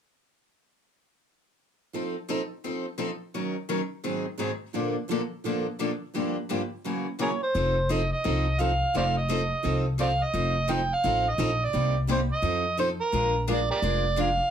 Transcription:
1.94 steel-string acoustic guitar F3 C4 D#4 A4
2.29 steel-string acoustic guitar F3 C4 D#4 A4
2.64 steel-string acoustic guitar F3 C4 D#4 A4
2.98 steel-string acoustic guitar F3 C4 D#4 A4
3.34 steel-string acoustic guitar D#3 F#3 C#4 D#4 A#4
3.69 steel-string acoustic guitar D#3 F#3 C#4 D#4 A#4
4.04 steel-string acoustic guitar G#2 D#3 F#3 C4 D#4 G#4
4.39 steel-string acoustic guitar G#2 D#3 F#3 C4 D#4 G#4
4.74 steel-string acoustic guitar A#2 D3 F3 A#3 D4 A4
5.11 steel-string acoustic guitar A#2 D3 F3 A#3 D4 A4
5.45 steel-string acoustic guitar A#2 D3 F3 A#3 D4 A4
5.79 steel-string acoustic guitar A#2 D3 F3 A#3 D4 A4
6.14 steel-string acoustic guitar G2 D3 F3 A#3 D4 G4
6.49 steel-string acoustic guitar G2 D3 F3 A#3 D4 G4
6.84 steel-string acoustic guitar F#2 C#3 E3 F#3 A#3 C#4 E4 F#4 A#4
7.19 steel-string acoustic guitar F#2 C#3 E3 F#3 A#3 C#4 E4 F#4 A#4, harmonica G#4 A#4 C#5
7.43 harmonica C5
7.55 upright bass F1, steel-string acoustic guitar F3 C4 D#4 A4
7.89 steel-string acoustic guitar F3 C4 D#4 A4, harmonica D#5
8.12 harmonica D#5
8.24 upright bass C2, steel-string acoustic guitar F3 C4 D#4 A4
8.59 steel-string acoustic guitar F3 C4 D#4 A4, harmonica F5
8.94 upright bass F1, steel-string acoustic guitar F3 C4 D#4 A4, harmonica C5 D5 F5
9.17 harmonica D#5
9.29 steel-string acoustic guitar F3 C4 D#4 A4
9.64 upright bass C2, steel-string acoustic guitar F3 C4 D#4 A4
9.98 steel-string acoustic guitar F3 C4 D#4 A4, harmonica C5 D5 F5
10.23 harmonica D#5
10.33 upright bass F1, steel-string acoustic guitar F3 C4 D#4 A4
10.68 steel-string acoustic guitar F3 C4 D#4 A4, harmonica G5
10.94 harmonica F5
11.04 upright bass A1, steel-string acoustic guitar F3 C4 D#4 A4
11.29 harmonica D#5
11.38 upright bass A#1, steel-string acoustic guitar F3 C4 D#4 A4
11.64 harmonica D5
11.73 upright bass C2, steel-string acoustic guitar C3 G3 A#3 D#4 G4
12.09 steel-string acoustic guitar C3 G3 A#3 D#4 G4, harmonica C5
12.32 harmonica D#5
12.42 upright bass F2, steel-string acoustic guitar F3 C4 D#4 A4
12.77 steel-string acoustic guitar F3 C4 D#4 A4, harmonica C5
13.01 harmonica A#4
13.12 upright bass A#1, steel-string acoustic guitar F3 G#3 D4 F4 A#4
13.48 steel-string acoustic guitar F3 G#3 D4 F4 A#4, harmonica D5
13.71 harmonica G4 A#4 D5
13.82 upright bass F1, steel-string acoustic guitar F3 G#3 D4 F4 A#4
14.16 steel-string acoustic guitar F3 G#3 D4 F4 A#4, harmonica F5

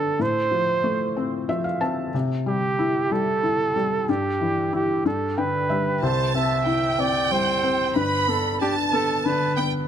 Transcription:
Already playing: felt piano G2 D3 B3 D4, flugelhorn A4
0.19 felt piano A2, flugelhorn C5
0.51 felt piano F3
0.84 felt piano A3
1.17 felt piano C4
1.49 felt piano F3 E5
1.64 felt piano F5
1.81 felt piano C4 A5
2.14 felt piano C3
2.46 felt piano G3, flugelhorn G4
2.79 felt piano E4
3.11 felt piano G3, flugelhorn A4
3.43 felt piano E4
3.76 felt piano G3
4.09 felt piano G2, flugelhorn G4
4.41 felt piano E3
4.73 felt piano E4, flugelhorn G4
5.05 felt piano G2, flugelhorn A4
5.38 felt piano D3 G5, flugelhorn B4
5.69 felt piano G3 E5
6.01 felt piano C2 C3, flugelhorn C5, violin section A5
6.35 felt piano C4, flugelhorn E5
6.66 felt piano E4, violin section G5
6.99 felt piano C4, flugelhorn D5
7.31 felt piano G3, flugelhorn C5
7.64 felt piano C4
7.96 felt piano G1 G2, flugelhorn B4, violin section B5
8.28 felt piano B3, flugelhorn A4
8.61 felt piano D4, flugelhorn G4, violin section A5
8.93 felt piano B3, flugelhorn A4
9.25 felt piano D3, flugelhorn B4
9.56 felt piano B3, violin section G5

